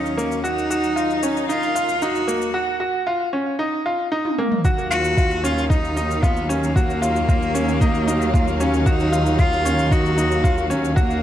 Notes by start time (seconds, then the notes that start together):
Already playing: D#2 D#3 F#3 C#4 D#4 F5
0.06 shaker
0.17 A#3, shaker
0.32 shaker
0.43 D#4 F#4, shaker
0.58 shaker
0.70 F#4, shaker
0.84 shaker
0.96 F4, shaker
1.10 shaker
1.23 C#4, shaker
1.37 shaker
1.49 D#4 F4, shaker
1.63 shaker
1.75 F4, shaker
1.89 shaker
2.02 D#4 F#4, shaker
2.15 shaker
2.28 A#3, shaker
2.42 shaker
2.54 F#4
2.80 F#4
3.07 F4
3.33 C#4
3.59 D#4
3.86 F4
4.12 D#4
4.25 high tom
4.38 A#3, mid tom
4.52 mid tom
4.65 D#2 D#3 F#3 A#3 F#4 F5, kick, shaker
4.78 shaker
4.90 F4 F#4, shaker
5.05 shaker
5.17 F4, kick, shaker
5.31 shaker
5.44 C#4 F4, shaker
5.58 shaker
5.70 D#4, kick, shaker
5.85 shaker
5.97 D#4, shaker
6.11 shaker
6.23 B3 F4, kick, shaker
6.37 shaker
6.49 A#3 C#4, shaker
6.63 shaker
6.76 F#4, kick, shaker
6.90 shaker
7.02 F4, shaker
7.16 shaker
7.29 F4, kick, shaker
7.42 shaker
7.54 C#4, shaker
7.69 shaker
7.81 D#4, kick, shaker
7.95 shaker
8.07 D#4, shaker
8.22 shaker
8.34 F4, kick, shaker
8.48 shaker
8.60 C#4, shaker
8.74 shaker
8.86 D#4 F#4, kick, shaker
9.00 shaker
9.12 F4, shaker
9.26 shaker
9.39 F4, kick, shaker
9.53 shaker
9.65 C#4, shaker
9.79 shaker
9.91 D#4 F#4, kick, shaker
10.06 shaker
10.17 D#4, shaker
10.31 shaker
10.44 F4, kick, shaker
10.58 shaker
10.70 C#4, shaker
10.84 shaker
10.96 A#3 F#4, kick, shaker
11.10 shaker